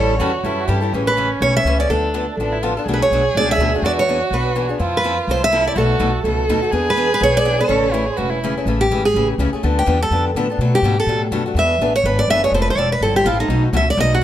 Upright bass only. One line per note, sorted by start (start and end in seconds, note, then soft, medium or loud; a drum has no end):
0.00 0.19 A1 medium
0.20 0.43 E2 medium
0.44 0.67 F#2 medium
0.68 0.91 G2 medium
0.93 1.31 A1 medium
1.40 1.61 B1 medium
1.65 1.85 C#2 medium
1.90 2.28 D2 medium
2.37 2.76 A1 medium
2.86 3.05 B1 medium
3.10 3.31 B1 medium
3.35 3.55 C#2 medium
3.58 3.78 D2 medium
3.82 4.21 E2 medium
4.30 4.69 B1 medium
4.80 5.18 F2 medium
5.27 5.66 C2 medium
5.76 5.95 B1 medium
6.00 6.20 B1 medium
6.24 6.45 C#2 medium
6.49 6.69 D#2 medium
6.73 7.11 E2 medium
7.21 7.60 B1 medium
7.69 8.08 A1 medium
8.18 8.56 E1 medium
8.65 8.89 A1 medium
8.91 9.13 G#1 medium
9.14 9.38 A1 medium
9.38 9.51 C#2 medium
9.53 muted upright bass stroke soft
9.63 9.87 D2 medium
9.87 10.10 E2 medium
10.11 10.34 F2 medium
10.35 10.58 A2 medium
10.59 10.82 B2 medium
10.82 11.06 G#2 medium
11.07 11.31 A2 medium
11.31 11.54 F#2 medium
11.55 11.78 E2 medium
11.79 12.03 A1 medium
12.04 12.27 G#1 medium
12.28 12.51 F#1 medium
12.51 12.75 F1 medium
12.76 13.00 E1 medium
13.01 13.24 G1 medium
13.25 13.48 A1 medium
13.48 13.72 B1 medium
13.73 13.97 C#2 medium
13.97 14.21 B1 loud